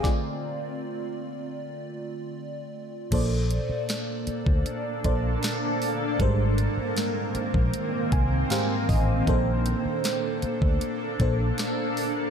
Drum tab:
CC |----------------|x---------------|----------------|----------------|
HH |----------------|x-x-x-x-x-x-x-o-|x-x-x-x-x-x-x-o-|x-x-x-x-x-x-x-o-|
SD |o---------------|----o-------o---|----o-------o---|----o-------o---|
BD |o---------------|o------o--o-----|o------o--o---o-|o------o--o-----|